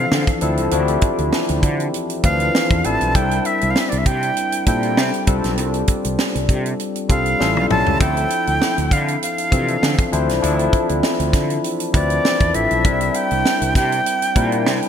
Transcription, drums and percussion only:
0.12 snare medium
0.27 kick medium
0.27 closed hi-hat soft
0.41 closed hi-hat medium
0.57 closed hi-hat soft
0.71 closed hi-hat medium
0.88 closed hi-hat soft
1.01 kick medium
1.01 closed hi-hat medium
1.18 closed hi-hat soft
1.33 snare medium
1.49 closed hi-hat medium
1.63 kick medium
1.63 closed hi-hat medium
1.80 closed hi-hat soft
1.94 closed hi-hat medium
2.10 closed hi-hat soft
2.23 kick medium
2.23 closed hi-hat medium
2.40 closed hi-hat soft
2.55 snare medium
2.71 kick medium
2.71 closed hi-hat soft
2.84 closed hi-hat medium
3.01 closed hi-hat soft
3.15 kick medium
3.15 closed hi-hat medium
3.31 closed hi-hat soft
3.45 closed hi-hat medium
3.61 closed hi-hat soft
3.76 snare medium
3.92 closed hi-hat soft
4.06 kick medium
4.06 closed hi-hat medium
4.23 closed hi-hat soft
4.37 closed hi-hat medium
4.52 closed hi-hat medium
4.66 kick medium
4.66 closed hi-hat medium
4.83 closed hi-hat soft
4.97 snare medium
5.14 closed hi-hat soft
5.27 kick medium
5.27 closed hi-hat medium
5.44 snare soft
5.44 closed hi-hat soft
5.58 closed hi-hat medium
5.74 closed hi-hat soft
5.88 kick medium
5.88 closed hi-hat medium
6.05 closed hi-hat soft
6.19 snare medium
6.35 closed hi-hat soft
6.49 kick medium
6.49 closed hi-hat medium
6.66 closed hi-hat soft
6.80 closed hi-hat medium
6.96 closed hi-hat medium
7.09 kick medium
7.09 closed hi-hat medium
7.26 closed hi-hat soft
7.40 snare soft
7.57 high tom soft
7.71 mid tom medium
7.87 floor tom medium
8.01 kick medium
8.01 closed hi-hat medium
8.17 closed hi-hat soft
8.30 closed hi-hat medium
8.47 closed hi-hat soft
8.62 snare medium
8.78 closed hi-hat soft
8.91 kick medium
8.91 closed hi-hat medium
9.08 closed hi-hat soft
9.23 closed hi-hat medium
9.38 closed hi-hat medium
9.52 kick medium
9.52 closed hi-hat medium
9.68 closed hi-hat soft
9.83 snare medium
9.99 kick medium
9.99 closed hi-hat soft
10.13 closed hi-hat medium
10.29 snare soft
10.29 closed hi-hat soft
10.44 closed hi-hat medium
10.59 closed hi-hat soft
10.73 kick medium
10.73 closed hi-hat medium
10.89 closed hi-hat soft
11.03 snare medium
11.20 closed hi-hat soft
11.33 kick medium
11.33 snare soft
11.33 closed hi-hat medium
11.50 closed hi-hat soft
11.64 closed hi-hat medium
11.80 closed hi-hat medium
11.94 kick medium
11.94 closed hi-hat medium
12.10 closed hi-hat soft
12.25 snare loud
12.41 kick medium
12.41 closed hi-hat soft
12.54 closed hi-hat medium
12.71 closed hi-hat soft
12.85 kick medium
12.85 closed hi-hat medium
13.01 closed hi-hat soft
13.14 closed hi-hat medium
13.31 closed hi-hat soft
13.45 snare medium
13.62 closed hi-hat soft
13.75 kick medium
13.75 snare soft
13.75 closed hi-hat medium
13.92 closed hi-hat soft
14.06 closed hi-hat medium
14.22 closed hi-hat soft
14.36 kick medium
14.36 closed hi-hat medium
14.52 closed hi-hat soft
14.66 snare loud
14.82 closed hi-hat soft

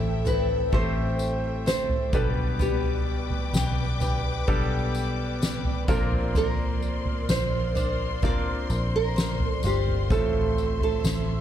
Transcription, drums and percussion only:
0.26 floor tom medium
0.26 tambourine medium
0.73 kick loud
1.19 tambourine medium
1.68 snare loud
1.68 tambourine medium
1.89 floor tom medium
2.13 kick loud
2.13 tambourine medium
2.36 floor tom medium
2.60 floor tom loud
2.60 tambourine medium
3.30 floor tom medium
3.54 snare loud
3.54 tambourine medium
4.01 floor tom medium
4.01 tambourine soft
4.48 kick loud
4.48 tambourine soft
4.95 tambourine medium
5.42 snare loud
5.42 tambourine medium
5.65 floor tom medium
5.88 kick loud
5.88 tambourine medium
6.12 floor tom medium
6.35 floor tom loud
6.35 tambourine medium
6.82 tambourine soft
7.05 floor tom medium
7.29 snare loud
7.29 tambourine loud
7.76 floor tom medium
7.76 tambourine medium
8.23 kick loud
8.23 floor tom medium
8.23 tambourine soft
8.70 tambourine soft
9.18 snare loud
9.18 tambourine medium
9.40 floor tom medium
9.63 tambourine medium
9.87 floor tom medium
10.10 kick loud
10.10 floor tom loud
10.10 tambourine medium
10.58 tambourine soft
10.81 floor tom medium
11.05 snare loud
11.05 tambourine medium

